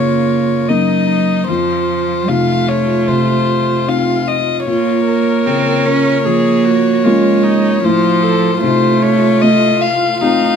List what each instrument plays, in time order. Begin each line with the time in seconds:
Already playing: felt piano F#2 C#3 A#3 D#4, cello A#3, viola F4, violin C#5
0.68 cello F#3, felt piano A#3 C#4 D#4, viola D#4, violin D#5
1.09 viola D#4
1.48 felt piano F2, cello F3, viola F4, violin C5
2.28 felt piano C3 D#4 F4, cello A3, violin F5
2.68 violin C#5
3.08 felt piano C3, violin C5
3.88 felt piano C4 D#4 F4, violin F5
4.28 violin D#5
4.67 felt piano A#2, cello A#3, viola F4, violin C#5
5.07 viola A#4
5.46 felt piano C#3 A#3 F4, cello C4
5.86 cello C#4
6.25 felt piano F3, cello A#3, viola G#4
6.65 viola F#4
7.04 cello G#3, felt piano A#3 C#4 F4, viola F4
7.44 viola D#4
7.83 felt piano A2, cello F3, viola F4, violin C5
8.23 viola A4
8.62 felt piano C3 D#4 F4, cello A3, viola F4, violin C5
9.02 violin C#5
9.42 felt piano A3, violin D#5
9.81 violin F5
10.21 felt piano C4 D#4 F4, viola D#4, violin F5